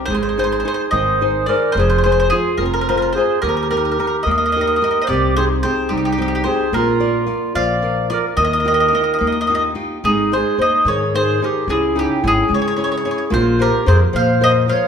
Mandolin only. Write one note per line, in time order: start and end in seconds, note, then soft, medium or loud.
0.06 0.13 C5 medium
0.15 0.21 C5 medium
0.23 0.28 C5 medium
0.29 0.37 C5 soft
0.39 0.43 C5 medium
0.44 0.51 C5 medium
0.52 0.59 C5 medium
0.60 0.67 C5 medium
0.68 0.73 C5 medium
0.74 0.82 C5 medium
0.91 1.43 D#5 medium
1.46 1.72 D5 medium
1.72 1.78 C5 medium
1.80 1.88 C5 medium
1.90 1.97 C5 medium
1.98 2.02 C5 medium
2.04 2.11 C5 medium
2.12 2.18 C5 medium
2.20 2.27 C5 medium
2.30 2.59 G#4 medium
2.58 2.64 A#4 medium
2.66 2.72 A#4 soft
2.74 2.80 A#4 medium
2.81 2.88 A#4 medium
2.89 2.96 A#4 medium
2.97 3.01 A#4 medium
3.02 3.10 A#4 medium
3.13 3.39 C5 medium
3.42 3.48 A#4 medium
3.49 3.56 A#4 medium
3.57 3.61 A#4 medium
3.63 3.69 A#4 soft
3.71 3.76 A#4 medium
3.77 3.84 A#4 soft
3.85 3.90 A#4 soft
3.91 3.99 A#4 soft
4.00 4.06 A#4 medium
4.07 4.16 A#4 medium
4.23 4.30 D#5 medium
4.31 4.36 D#5 medium
4.38 4.44 D#5 medium
4.46 4.51 D#5 medium
4.52 4.60 D#5 medium
4.61 4.66 D#5 medium
4.67 4.75 D#5 medium
4.76 4.83 D#5 medium
4.84 4.90 D#5 medium
4.91 4.98 D#5 soft
5.02 5.07 D#5 medium
5.07 5.34 D5 medium
5.36 5.44 C5 medium
5.63 5.89 C5 medium
5.89 5.96 G4 medium
5.97 6.04 G4 medium
6.05 6.11 G4 medium
6.12 6.21 G4 medium
6.22 6.27 G4 medium
6.28 6.34 G4 medium
6.35 6.43 G4 medium
6.44 6.73 C5 medium
6.74 7.52 A#4 medium
7.55 8.07 F5 loud
8.10 8.17 D5 medium
8.37 8.43 D#5 medium
8.44 8.52 D#5 medium
8.53 8.59 D#5 medium
8.60 8.67 D#5 soft
8.68 8.73 D#5 medium
8.74 8.79 D#5 medium
8.80 8.87 D#5 medium
8.88 8.93 D#5 medium
8.95 9.03 D#5 medium
9.04 9.11 D#5 soft
9.14 9.17 D#5 medium
9.19 9.26 D#5 soft
9.27 9.31 D#5 medium
9.32 9.40 D#5 soft
9.41 9.46 D#5 medium
9.47 9.54 D#5 medium
9.55 9.62 D#5 medium
10.05 10.30 G#4 medium
10.33 10.61 C5 medium
10.62 10.86 D#5 medium
10.88 11.13 C#5 medium
11.16 11.40 C5 medium
11.44 11.68 A#4 medium
11.70 11.95 G#4 medium
11.99 12.25 G4 medium
12.28 12.51 G#4 medium
12.54 12.59 C#5 medium
12.62 12.66 C#5 medium
12.68 12.73 C#5 medium
12.76 12.81 C#5 soft
12.84 12.89 C#5 medium
12.92 12.96 C#5 medium
12.97 13.03 C#5 medium
13.05 13.10 C#5 soft
13.11 13.17 C#5 medium
13.18 13.24 C#5 soft
13.34 13.59 C5 medium
13.62 13.87 A#4 medium
13.88 13.96 C5 medium
14.16 14.44 F5 medium
14.44 14.51 D#5 loud
14.69 14.88 F5 medium